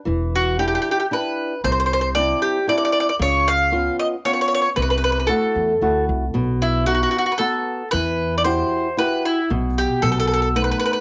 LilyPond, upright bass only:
\new Staff \with { instrumentName = "Upright bass" } { \clef bass \time 3/4 \key e \minor \tempo 4 = 114 e,,2 r4 | c,2 r4 | cis,2 r4 | c,4. e,8 d,8 c,8 |
b,,2 r4 | e,2 r4 | b,,4 b,,2 | }